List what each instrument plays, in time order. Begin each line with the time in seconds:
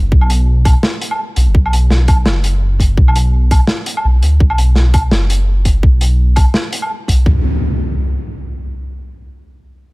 Already playing: detuned saw bass F#1
0.12 detuned saw bass B1, kick
0.21 low woodblock
0.30 closed hi-hat
0.65 kick, closed hi-hat, low woodblock
0.83 snare
1.01 closed hi-hat
1.11 low woodblock
1.36 detuned saw bass B1, closed hi-hat
1.47 detuned saw bass F#1
1.55 detuned saw bass B1, kick
1.66 low woodblock
1.73 closed hi-hat
1.90 snare
2.08 kick, closed hi-hat, low woodblock
2.26 detuned saw bass F#1, snare
2.44 closed hi-hat
2.80 kick, closed hi-hat
2.97 detuned saw bass B1, kick
3.08 low woodblock
3.16 closed hi-hat
3.51 kick, closed hi-hat, low woodblock
3.67 snare
3.86 closed hi-hat
3.97 low woodblock
4.05 detuned saw bass B1
4.23 detuned saw bass D2, closed hi-hat
4.40 detuned saw bass B1, kick
4.50 low woodblock
4.58 closed hi-hat
4.75 snare
4.94 kick, closed hi-hat, low woodblock
5.11 detuned saw bass F#1, snare
5.30 closed hi-hat
5.65 kick, closed hi-hat
5.83 detuned saw bass B1, kick
6.01 closed hi-hat
6.36 kick, closed hi-hat, low woodblock
6.54 snare
6.73 closed hi-hat
6.82 low woodblock
7.08 detuned saw bass B1, kick, closed hi-hat
7.19 detuned saw bass B1
7.26 detuned saw bass B1, kick, impact